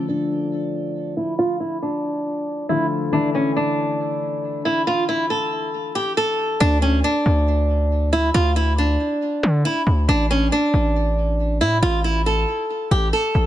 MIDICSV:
0, 0, Header, 1, 4, 480
1, 0, Start_track
1, 0, Tempo, 434783
1, 1533, Time_signature, 4, 2, 24, 8
1, 14864, End_track
2, 0, Start_track
2, 0, Title_t, "Nylon-string guitar"
2, 0, Program_c, 0, 24
2, 93, Note_on_c, 0, 62, 83
2, 1249, Note_off_c, 0, 62, 0
2, 1290, Note_on_c, 0, 64, 78
2, 1472, Note_off_c, 0, 64, 0
2, 1531, Note_on_c, 0, 65, 101
2, 1712, Note_off_c, 0, 65, 0
2, 1769, Note_on_c, 0, 64, 87
2, 1951, Note_off_c, 0, 64, 0
2, 2013, Note_on_c, 0, 62, 81
2, 2929, Note_off_c, 0, 62, 0
2, 2972, Note_on_c, 0, 64, 78
2, 3153, Note_off_c, 0, 64, 0
2, 3452, Note_on_c, 0, 62, 107
2, 3633, Note_off_c, 0, 62, 0
2, 3695, Note_on_c, 0, 61, 87
2, 3875, Note_off_c, 0, 61, 0
2, 3936, Note_on_c, 0, 62, 81
2, 5091, Note_off_c, 0, 62, 0
2, 5136, Note_on_c, 0, 64, 86
2, 5316, Note_off_c, 0, 64, 0
2, 5377, Note_on_c, 0, 65, 105
2, 5556, Note_off_c, 0, 65, 0
2, 5615, Note_on_c, 0, 64, 80
2, 5795, Note_off_c, 0, 64, 0
2, 5853, Note_on_c, 0, 69, 82
2, 6530, Note_off_c, 0, 69, 0
2, 6572, Note_on_c, 0, 67, 83
2, 6753, Note_off_c, 0, 67, 0
2, 6814, Note_on_c, 0, 69, 79
2, 7265, Note_off_c, 0, 69, 0
2, 7290, Note_on_c, 0, 62, 113
2, 7472, Note_off_c, 0, 62, 0
2, 7530, Note_on_c, 0, 61, 93
2, 7712, Note_off_c, 0, 61, 0
2, 7774, Note_on_c, 0, 62, 89
2, 8930, Note_off_c, 0, 62, 0
2, 8972, Note_on_c, 0, 64, 84
2, 9153, Note_off_c, 0, 64, 0
2, 9211, Note_on_c, 0, 65, 107
2, 9393, Note_off_c, 0, 65, 0
2, 9451, Note_on_c, 0, 64, 89
2, 9632, Note_off_c, 0, 64, 0
2, 9697, Note_on_c, 0, 62, 87
2, 10611, Note_off_c, 0, 62, 0
2, 10655, Note_on_c, 0, 64, 83
2, 10835, Note_off_c, 0, 64, 0
2, 11136, Note_on_c, 0, 62, 106
2, 11315, Note_off_c, 0, 62, 0
2, 11378, Note_on_c, 0, 61, 92
2, 11557, Note_off_c, 0, 61, 0
2, 11616, Note_on_c, 0, 62, 85
2, 12771, Note_off_c, 0, 62, 0
2, 12817, Note_on_c, 0, 64, 90
2, 12996, Note_off_c, 0, 64, 0
2, 13056, Note_on_c, 0, 65, 110
2, 13236, Note_off_c, 0, 65, 0
2, 13296, Note_on_c, 0, 64, 88
2, 13475, Note_off_c, 0, 64, 0
2, 13538, Note_on_c, 0, 69, 81
2, 14213, Note_off_c, 0, 69, 0
2, 14256, Note_on_c, 0, 67, 84
2, 14436, Note_off_c, 0, 67, 0
2, 14496, Note_on_c, 0, 69, 79
2, 14864, Note_off_c, 0, 69, 0
2, 14864, End_track
3, 0, Start_track
3, 0, Title_t, "Grand piano"
3, 0, Program_c, 1, 0
3, 0, Control_c, 1, 64, 127
3, 0, Note_on_c, 1, 50, 64
3, 0, Note_on_c, 1, 53, 65
3, 0, Note_on_c, 1, 57, 57
3, 0, Note_on_c, 1, 65, 72
3, 2922, Note_off_c, 1, 50, 0
3, 2927, Note_off_c, 1, 53, 0
3, 2933, Note_off_c, 1, 57, 0
3, 2938, Note_off_c, 1, 65, 0
3, 2968, Note_on_c, 1, 50, 53
3, 2973, Note_on_c, 1, 53, 48
3, 2978, Note_on_c, 1, 57, 49
3, 2984, Note_on_c, 1, 65, 59
3, 3423, Note_off_c, 1, 50, 0
3, 3439, Note_on_c, 1, 50, 66
3, 3443, Note_off_c, 1, 57, 0
3, 3450, Note_on_c, 1, 52, 62
3, 3453, Note_off_c, 1, 53, 0
3, 3459, Note_off_c, 1, 65, 0
3, 3460, Note_on_c, 1, 57, 64
3, 3468, Control_c, 1, 64, 0
3, 3471, Note_on_c, 1, 64, 72
3, 3645, Control_c, 1, 64, 127
3, 7242, Note_off_c, 1, 50, 0
3, 7248, Note_off_c, 1, 52, 0
3, 7253, Note_off_c, 1, 57, 0
3, 7258, Note_off_c, 1, 64, 0
3, 7310, Control_c, 1, 64, 0
3, 14864, End_track
4, 0, Start_track
4, 0, Title_t, "808-style bass"
4, 0, Program_c, 2, 38
4, 7294, Note_on_c, 2, 38, 115
4, 7755, Note_off_c, 2, 38, 0
4, 8012, Note_on_c, 2, 38, 101
4, 9169, Note_off_c, 2, 38, 0
4, 9213, Note_on_c, 2, 38, 118
4, 9905, Note_off_c, 2, 38, 0
4, 10414, Note_on_c, 2, 50, 102
4, 10644, Note_off_c, 2, 50, 0
4, 10892, Note_on_c, 2, 38, 105
4, 11124, Note_off_c, 2, 38, 0
4, 11133, Note_on_c, 2, 33, 118
4, 11594, Note_off_c, 2, 33, 0
4, 11853, Note_on_c, 2, 33, 107
4, 12814, Note_on_c, 2, 45, 99
4, 12831, Note_off_c, 2, 33, 0
4, 13042, Note_off_c, 2, 45, 0
4, 13054, Note_on_c, 2, 33, 115
4, 13745, Note_off_c, 2, 33, 0
4, 14254, Note_on_c, 2, 33, 104
4, 14484, Note_off_c, 2, 33, 0
4, 14737, Note_on_c, 2, 33, 104
4, 14864, Note_off_c, 2, 33, 0
4, 14864, End_track
0, 0, End_of_file